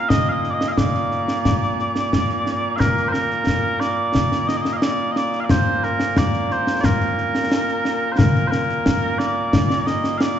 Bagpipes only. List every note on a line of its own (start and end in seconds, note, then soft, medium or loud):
0.00 10.39 A#2 medium
0.00 10.39 A#3 medium
0.09 0.29 D#5 loud
0.29 0.50 D#5 loud
0.29 0.31 F5 medium
0.50 0.54 D5 medium
0.50 0.68 D#5 loud
0.68 0.72 F5 medium
0.72 0.78 D#5 medium
0.78 2.76 D5 medium
2.76 3.09 A#4 medium
2.76 2.79 F5 medium
3.09 3.80 A#4 loud
3.09 3.13 C5 loud
3.80 4.48 D5 loud
4.48 4.57 D#5 medium
4.57 4.62 D5 medium
4.62 4.73 D#5 loud
4.73 4.82 D#5 medium
4.73 4.77 F5 medium
4.82 5.11 D5 medium
5.11 5.17 D#5 medium
5.17 5.40 D5 loud
5.40 5.45 F5 medium
5.45 5.51 D5 medium
5.51 5.84 C5 medium
5.84 6.18 A#4 medium
6.18 6.52 D5 medium
6.52 6.80 C5 medium
6.80 6.85 D5 medium
6.85 8.12 A#4 medium
8.12 8.18 C5 medium
8.18 8.48 A#4 loud
8.48 9.18 A#4 medium
8.48 8.51 C5 medium
9.18 9.86 D5 medium
9.86 10.18 D#5 medium
10.18 10.39 D5 medium
10.18 10.21 F5 medium